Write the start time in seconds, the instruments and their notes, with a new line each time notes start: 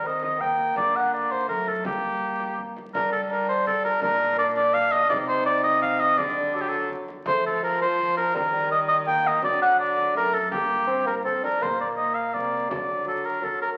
Already playing: cello D#3
0.04 bassoon C4, oboe D#5
0.23 oboe D#5, frame drum
0.39 bassoon A#3, oboe G5, frame drum
0.57 frame drum
0.76 cello D3, oboe D5, frame drum
0.96 oboe F#5
1.14 oboe D5
1.30 oboe C5, frame drum
1.48 cello F#3, bassoon A3, oboe A#4, frame drum
1.66 oboe A4, frame drum
1.85 cello G3, bassoon A#3, oboe G4, frame drum
2.40 frame drum
2.58 frame drum
2.77 frame drum
2.94 cello G3, bassoon D4, oboe A#4, frame drum
3.13 oboe A4
3.31 bassoon D4, oboe A#4
3.49 oboe C5, frame drum
3.67 oboe A4, frame drum
3.84 oboe A#4, frame drum
4.01 cello A#2, bassoon D4, oboe A#4, frame drum
4.38 bassoon D4, oboe D5
4.55 oboe D5, frame drum
4.74 bassoon D4, oboe F5, frame drum
4.91 oboe D#5, frame drum
5.10 cello C3, bassoon D#4, oboe D5, frame drum
5.28 oboe C5
5.46 oboe D5
5.63 oboe D#5, frame drum
5.82 oboe F5, frame drum
5.99 oboe D#5, frame drum
6.17 cello D3, bassoon G3, oboe D5, frame drum
6.55 bassoon F#3, oboe A4
6.61 oboe G4
6.69 oboe A4, frame drum
6.89 frame drum
7.08 frame drum
7.26 cello F3, bassoon A3, oboe C5, frame drum
7.46 oboe A4
7.63 bassoon F3, oboe A#4
7.81 oboe C5, frame drum
7.99 frame drum
8.17 oboe A#4, frame drum
8.34 cello D#3, bassoon G3, oboe A#4, frame drum
8.53 bassoon G3
8.71 oboe D#5
8.89 oboe D#5, frame drum
9.07 bassoon A#3, oboe G5, frame drum
9.25 oboe D#5, frame drum
9.42 cello D3, bassoon F#3, oboe D5, frame drum
9.62 oboe F#5
9.80 oboe D5
9.96 frame drum
10.14 cello F#2, bassoon A3, oboe A#4, frame drum
10.33 oboe A4, frame drum
10.51 cello G2, bassoon A#3, oboe G4, frame drum
10.87 bassoon C4
11.07 bassoon A#3, oboe A#4, frame drum
11.25 bassoon C4, oboe A4, frame drum
11.43 bassoon D4, oboe A#4, frame drum
11.61 cello A#2, bassoon A#3, oboe C5, frame drum
11.80 oboe D5
11.97 oboe D#5
12.14 oboe F5
12.34 cello C3, bassoon A#3, oboe D5, frame drum
12.70 cello D3, bassoon F#3, oboe D5, frame drum
13.06 bassoon F#3, oboe A4
13.25 oboe A#4
13.42 bassoon F#3, oboe A4, frame drum
13.62 oboe A#4